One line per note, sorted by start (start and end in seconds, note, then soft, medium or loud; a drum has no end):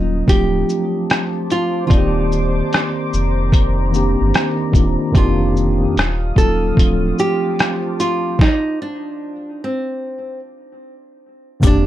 0.00 0.23 D#1 loud
0.00 0.27 F#3 medium
0.00 0.27 A#3 medium
0.00 0.27 C#4 medium
0.00 0.24 D#4 medium
0.00 0.28 D#4 medium
0.00 0.29 F4 medium
0.00 0.26 A#5 medium
0.26 0.64 D1 medium
0.26 1.69 F3 medium
0.26 1.69 A3 medium
0.26 1.70 C4 medium
0.26 1.70 D4 medium
0.26 1.89 F4 medium
0.26 1.51 G4 loud
0.26 5.11 C5 medium
0.26 1.89 A5 medium
0.26 5.11 D6 medium
0.26 kick medium
0.26 closed hi-hat medium
0.31 1.71 F4 medium
0.69 shaker soft
1.10 cross-stick loud
1.10 closed hi-hat medium
1.50 1.86 F4 medium
1.50 closed hi-hat soft
1.50 shaker soft
1.86 3.30 D#3 medium
1.86 5.11 D#3 medium
1.86 3.30 A#3 medium
1.86 3.31 C4 medium
1.86 1.91 F4 medium
1.86 3.31 D5 medium
1.86 5.11 A#5 medium
1.86 kick loud
1.91 2.62 D#1 loud
1.91 3.50 D#4 medium
1.91 1.99 F4 medium
1.91 closed hi-hat medium
1.98 3.35 G4 loud
2.32 shaker soft
2.73 cross-stick loud
2.73 closed hi-hat medium
3.13 4.16 F1 medium
3.13 shaker soft
3.52 kick medium
3.52 closed hi-hat medium
3.92 4.65 D#3 medium
3.92 4.65 A#3 medium
3.92 4.66 C4 medium
3.92 4.66 D4 medium
3.92 shaker soft
3.96 4.67 G4 medium
4.21 4.32 G1 medium
4.34 cross-stick loud
4.34 closed hi-hat medium
4.72 4.97 D#1 medium
4.72 5.09 D#3 medium
4.72 5.10 A#3 medium
4.72 5.10 C4 medium
4.72 5.11 D4 medium
4.72 5.11 F4 medium
4.72 kick medium
4.72 closed hi-hat soft
4.72 shaker soft
5.11 5.86 F1 loud
5.11 5.67 F2 loud
5.11 5.68 D#3 loud
5.11 5.69 A#3 medium
5.11 5.69 C4 medium
5.11 5.69 D4 medium
5.11 6.75 F5 medium
5.11 6.75 D#6 medium
5.11 kick loud
5.11 closed hi-hat medium
5.16 6.37 F4 medium
5.16 5.70 G4 loud
5.57 shaker soft
5.79 5.94 F2 medium
5.79 5.95 D#3 medium
5.79 5.95 A#3 medium
5.79 5.95 C4 medium
5.79 5.96 D4 medium
5.83 5.96 G4 medium
5.96 6.32 D#1 loud
5.96 cross-stick loud
5.96 closed hi-hat medium
6.35 6.72 D#1 medium
6.35 6.76 F#3 medium
6.35 6.77 A#3 medium
6.35 6.77 C#4 medium
6.35 6.78 D#4 medium
6.35 7.19 A4 loud
6.35 kick medium
6.35 shaker soft
6.40 6.78 F4 medium
6.75 7.13 D1 loud
6.75 8.17 F3 medium
6.75 8.18 A3 medium
6.75 8.18 C4 medium
6.75 8.19 D4 medium
6.75 8.37 F4 medium
6.75 8.37 C5 medium
6.75 8.37 A5 medium
6.75 8.37 D6 medium
6.75 kick medium
6.79 8.20 F4 medium
6.79 closed hi-hat medium
7.19 7.99 G4 medium
7.19 shaker soft
7.59 cross-stick loud
7.59 closed hi-hat medium
8.00 8.41 F4 medium
8.00 closed hi-hat soft
8.00 shaker soft
8.39 8.81 D#4 medium
8.39 kick loud
8.39 snare medium
8.82 9.64 D4 medium
9.64 10.39 C4 medium
11.60 11.87 F1 loud
11.60 11.87 F2 loud
11.60 11.87 D#3 medium
11.60 11.87 A#3 medium
11.60 11.87 C4 medium
11.60 11.87 D4 medium
11.60 kick loud
11.60 closed hi-hat medium
11.60 shaker medium
11.64 11.87 D4 medium
11.64 11.87 G4 loud